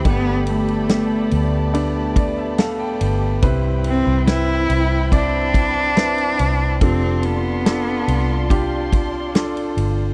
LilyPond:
<<
  \new Staff \with { instrumentName = "String section" } { \time 4/4 \key c \major \tempo 4 = 71 <g' d'' a'' b''>1 | <c' e' g'' b''>1 | <f' d'' a'' c'''>1 | }
  \new Staff \with { instrumentName = "Grand piano" } { \time 4/4 \key c \major << { <g, d>4. r4 d''16 e''16 f''16 g''16 g''8 | g,4. r2 r8 | c4. r2 r8 | } \\ { <a b g'>4 <a b g'>4 <a b d'>4 <a b a'>4 | <c' e' b'>4 <c' e' b'>4 <c' e' d''>4 <c' e' b'>4 | <d' f' a'>4 <d' f' a'>4 <d' f' g'>4 <d' f' a'>4 | } >> }
  \new Staff \with { instrumentName = "Cello" } { \time 4/4 \key c \major b8 a2 r4. | r8 c'8 e'4 d'2 | c'8 b2 r4. | }
  \new Staff \with { instrumentName = "Fingered electric bass" } { \clef bass \time 4/4 \key c \major g,,4. d,2 g,,8 | c,8. c,8. c,2 c,8 | f,,4. c,2 g,,8 | }
  \new DrumStaff \with { instrumentName = "Drums" } \drummode { \time 4/4 <bd cymr>8 cymr16 cymr16 <cymr sn>8 cymr8 cymr8 <bd cymr>8 <cymr sn>8 cymr8 | <bd cymr>8 cymr8 <cymr sn>8 cymr8 <bd cymr>8 <bd cymr>8 <cymr sn>16 cymr16 cymr8 | <bd cymr>8 cymr8 <cymr sn>8 cymr8 <bd cymr>8 <bd cymr>8 <cymr sn>16 cymr16 cymr8 | }
>>